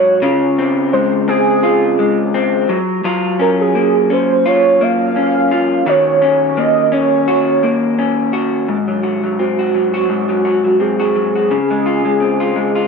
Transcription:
0.00 0.22 G#2 medium
0.00 0.30 F#3 medium
0.00 0.22 F#4 medium
0.00 0.54 C#5 medium
0.22 2.69 C#3 medium
0.22 1.63 F4 medium
0.58 1.27 C4 medium
0.93 1.98 G#3 medium
0.93 1.26 C5 loud
1.28 2.33 C4 medium
1.28 2.30 G#4 loud
1.63 3.05 F4 medium
1.99 2.77 G#3 medium
2.34 2.77 C4 medium
2.69 3.04 F#3 medium
3.04 5.86 F#3 medium
3.04 4.44 F4 medium
3.39 4.10 C#4 medium
3.39 3.50 A#4 medium
3.61 4.14 G#4 loud
3.75 4.81 A#3 medium
4.10 5.16 C#4 medium
4.10 4.49 C5 medium
4.46 5.50 F4 medium
4.46 4.84 C#5 loud
4.81 6.57 A#3 medium
4.81 5.87 F5 loud
5.16 6.21 C#4 medium
5.51 5.87 F4 medium
5.86 9.36 D#3 medium
5.86 7.27 F#4 medium
5.86 6.60 C#5 loud
6.22 6.91 C#4 medium
6.57 7.62 A#3 medium
6.57 6.94 D#5 loud
6.92 7.97 C#4 medium
6.92 8.34 C#5 medium
7.28 8.33 F#4 medium
7.63 8.77 A#3 medium
7.99 8.77 C#4 medium
8.33 9.03 F#4 medium
8.68 10.08 G#2 medium
8.88 9.22 F#3 medium
9.03 9.58 F#4 medium
9.23 9.73 F#3 medium
9.39 10.80 C4 medium
9.39 10.77 F#4 medium
9.59 9.93 F#4 medium
9.75 10.28 F#3 medium
9.94 10.44 F#4 medium
10.09 11.59 G#2 medium
10.29 10.63 F#3 medium
10.45 10.98 F#4 medium
10.64 11.14 F#3 soft
10.80 12.20 C4 soft
10.80 12.88 G#4 loud
11.00 11.34 F#4 medium
11.16 11.59 F#3 medium
11.35 11.59 F#4 medium
11.51 12.88 C#3 medium
11.70 12.04 G#3 medium
11.86 12.40 F4 medium
12.05 12.55 G#3 medium
12.20 12.88 C4 soft
12.40 12.75 F4 medium
12.56 12.88 G#3 medium
12.75 12.88 F4 medium

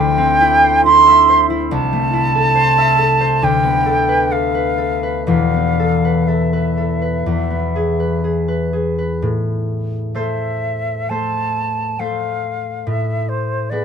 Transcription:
0.00 1.76 D2 medium
0.00 0.16 C4 medium
0.00 0.39 E4 medium
0.00 0.63 C5 medium
0.00 1.07 E5 medium
0.00 0.84 G5 loud
0.18 3.46 C4 medium
0.41 0.85 E4 medium
0.64 1.28 C5 medium
0.85 1.49 E4 medium
0.85 1.43 C6 loud
1.08 2.77 E5 medium
1.29 2.54 C5 medium
1.50 2.12 E4 medium
1.71 3.46 C2 medium
1.71 3.45 A5 loud
1.93 5.83 A3 medium
2.13 3.45 E4 medium
2.35 2.97 A4 medium
2.55 3.19 C5 medium
2.78 3.46 E5 medium
2.99 3.85 A4 medium
3.20 3.46 C5 medium
3.42 5.32 D2 medium
3.42 4.33 G5 medium
3.63 5.53 B3 medium
3.86 4.30 A4 medium
4.09 4.53 B4 medium
4.31 4.77 A4 soft
4.31 5.26 F5 medium
4.55 5.02 B4 soft
4.78 5.78 A4 soft
5.03 6.03 B4 soft
5.27 7.30 E1 soft
5.27 7.25 E2 medium
5.27 6.28 F5 medium
5.54 7.49 B3 soft
5.80 6.27 A4 soft
6.05 6.52 B4 soft
6.27 6.76 A4 soft
6.27 8.73 E5 medium
6.53 7.01 B4 soft
6.78 7.31 A4 soft
7.02 7.99 B4 soft
7.26 9.25 E2 soft
7.50 9.25 B3 soft
7.76 8.23 G#4 soft
8.00 8.47 B4 soft
8.24 8.72 G#4 soft
8.48 8.97 B4 soft
8.73 9.25 G#4 soft
8.98 9.25 B4 soft
9.22 12.85 A2 medium
10.13 11.09 A3 soft
10.13 11.10 A4 soft
10.13 11.10 C5 soft
10.13 11.11 E5 medium
11.09 11.98 A3 soft
11.09 11.99 A4 soft
11.09 11.99 C5 soft
11.09 12.01 A5 medium
11.99 12.90 A3 soft
11.99 12.90 A4 soft
11.99 12.90 C5 soft
11.99 12.88 F5 medium
12.87 13.85 A2 soft
12.87 13.30 E5 medium
13.29 13.71 C5 medium
13.70 13.85 B3 soft
13.70 13.85 G#4 soft
13.70 13.85 B4 soft
13.70 13.85 D5 medium

